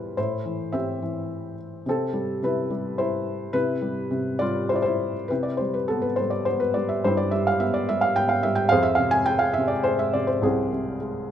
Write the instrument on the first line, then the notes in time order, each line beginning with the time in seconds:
felt piano
Already playing: E2 B2 E3 G3 E4 F4 G4 B4 C5 D5 E5
0.17 A2 E4 C5
0.45 E3
0.72 C4 G4 E5
1.02 E3
1.86 C3 C4 A4
2.13 G3
2.43 C3 E4 B4
2.70 G3
2.98 E4 C5
3.53 C3 E4 B4
3.82 G3
4.11 C3
4.39 G3 F4 D5
4.69 E4 C5
4.76 D5
4.82 E4 C5
5.28 C3 E4 G4 B4
5.43 D5
5.57 G3 C5
5.74 B4
5.88 B3 A4
6.02 B4
6.16 G3 C5
6.30 D5
6.45 B3 C5
6.60 B4
6.74 G3 D5
6.89 E5
7.04 G2 E4 G4 C5
7.17 D5
7.31 G3 E5
7.47 F5
7.60 B3 E5
7.74 D5
7.89 G3 E5
8.01 F5
8.16 B3 G5
8.29 F5
8.43 G3 E5
8.55 G5
8.69 F2 G#4 C5 F5
8.82 E5
8.95 C3 F5
9.11 G#5
9.26 G#3 G5
9.39 F5
9.54 E5
9.58 C3
9.68 D5
9.84 G#3 C5
9.99 E5
10.13 C3 D5
10.27 C5
10.42 C2 C4 G#4
10.72 C3
11.01 G#3